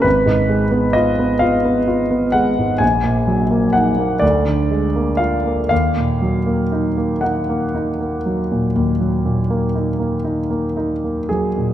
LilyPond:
<<
  \new Staff \with { instrumentName = "Grand piano" } { \time 12/8 \key ees \minor \tempo 4. = 40 ces''4 ees''8 f''4 ges''8 aes''4 ges''8 d''4 f''8 | f''4. ges''1 aes'8 | }
  \new Staff \with { instrumentName = "Grand piano" } { \time 12/8 \key ees \minor aes,,16 aes,16 aes16 ces'16 f'16 ces'16 f'16 ces'16 f'16 ces'16 aes16 aes,16 bes,,16 bes,16 ges16 bes16 ees'16 bes16 d,16 d16 aes16 bes16 f'16 bes16 | ees,16 bes,16 ges16 bes16 ees'16 bes16 ees'16 bes16 ees'16 bes16 ges16 bes,16 ees,16 ges16 bes,16 bes16 ees'16 bes16 ees'16 bes16 ees'16 bes16 ges16 bes,16 | }
>>